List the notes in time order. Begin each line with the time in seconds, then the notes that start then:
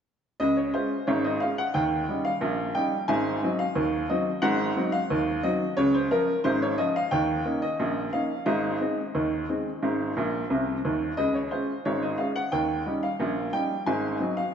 0.40 C#2 C#3 D#5
0.57 C#5
0.74 G#3 C#4 F4 C5
1.07 G#1 G#2 C#5
1.24 D#5
1.40 G#3 C#4 F4 F5
1.58 F#5
1.74 D#2 D#3 G5
2.09 G3 C#4 D#4
2.25 F5
2.41 A#1 A#2
2.75 G3 C#4 D#4 G5
3.08 G#1 G#2 G#5
3.43 F#3 C4 D#4
3.59 F5
3.75 D#2 D#3
4.10 F#3 C4 D#4 D#5
4.42 G#1 G#2 F#5
4.77 F#3 C4 D#4
4.92 F5
5.10 D#2 D#3
5.43 F#3 C4 D#4 D#5
5.77 C#2 C#3 C#5
5.94 C5
6.11 F3 C#4 F4 A#4
6.44 G#1 G#2 C5
6.62 C#5
6.78 F3 C#4 F4 D#5
6.96 F5
7.11 D#2 D#3 G5
7.45 A#3 C#4 D#4
7.62 D#5
7.80 A#1 A#2
8.13 A#3 C#4 D#4 F5
8.46 G#1 G#2 D#5
8.80 G#3 C4 D#4
9.15 D#2 D#3
9.49 G#3 C4 D#4
9.82 G#1 G#2
10.17 A#1 A#2
10.50 C2 C3
10.85 D#2 D#3
11.17 C#2 C#3 D#5
11.35 C#5
11.51 G#3 C#4 F4 C5
11.85 G#1 G#2 C#5
12.02 D#5
12.18 G#3 C#4 F4 F5
12.36 F#5
12.52 D#2 D#3 G5
12.86 G3 C#4 D#4
13.03 F5
13.20 A#1 A#2
13.53 G3 C#4 D#4 G5
13.86 G#1 G#2 G#5
14.20 F#3 C4 D#4
14.37 F5